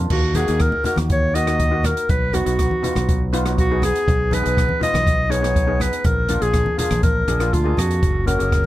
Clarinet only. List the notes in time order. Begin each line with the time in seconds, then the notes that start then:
0.12 F#4
0.36 G#4
0.61 A#4
0.86 A#4
1.12 C#5
1.35 D#5
1.86 A#4
2.10 B4
2.35 F#4
3.60 F#4
3.84 G#4
4.34 B4
4.83 D#5
5.31 C#5
5.81 B4
6.06 A#4
6.42 G#4
6.79 G#4
7.03 A#4
7.54 F4
7.78 F#4
8.27 A#4